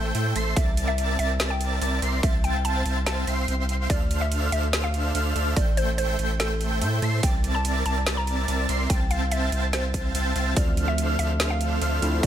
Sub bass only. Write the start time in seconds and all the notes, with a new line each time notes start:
Already playing: A1
0.15 A2
0.36 A1
0.57 C2
1.19 C2
1.82 C2
2.02 C2
2.23 C2
2.86 C2
3.27 C2
3.48 C2
3.90 D2
4.52 D2
5.15 D2
5.36 D2
5.57 A1
6.19 A1
6.82 A2
7.02 A2
7.23 C2
7.86 C2
8.48 C2
8.69 C2
8.90 C2
9.52 C2
10.15 C2
10.36 C2
10.57 D2
11.19 D2
11.82 D2
12.02 D2
12.23 A1